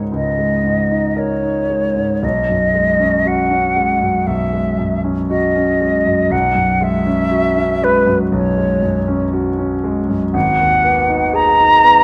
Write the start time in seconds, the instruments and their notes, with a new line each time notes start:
Already playing: grand piano C#2 G#2 G#3 D#4 A#4
0.12 grand piano C#2, flute D#5
0.39 grand piano G#3
0.64 grand piano G#2
0.91 grand piano D#4
1.17 grand piano A#4, flute C#5
1.43 grand piano D#4
1.69 grand piano G#3
1.96 grand piano G#2
2.23 grand piano B1, flute D#5
2.49 grand piano F#2
2.74 grand piano G#3
3.00 grand piano C#4
3.26 grand piano F#4, flute F#5
3.51 grand piano C#4
3.76 grand piano G#3
4.01 grand piano F#2
4.27 grand piano B1, flute E5
4.53 grand piano G#3
4.79 grand piano F#2
5.04 grand piano C#4
5.29 grand piano F#4, flute D#5
5.56 grand piano C#4
5.80 grand piano G#3
6.06 grand piano F#2
6.30 grand piano B1, flute F#5
6.55 grand piano F#2
6.81 grand piano G#3, flute E5
7.06 grand piano C#4
7.31 grand piano F#4
7.57 grand piano C#4
7.82 grand piano G#3, flute B4
8.07 grand piano F#2
8.32 grand piano B1, flute C#5
8.58 grand piano G#3
8.82 grand piano F#2
9.08 grand piano C#4
9.33 grand piano F#4
9.59 grand piano C#4
9.84 grand piano G#3
10.08 grand piano F#2
10.34 grand piano G#1, flute F#5
10.59 grand piano D#2
10.84 grand piano B3
11.08 grand piano D#4
11.34 grand piano G#4, flute A#5
11.59 grand piano D#4
11.84 grand piano B3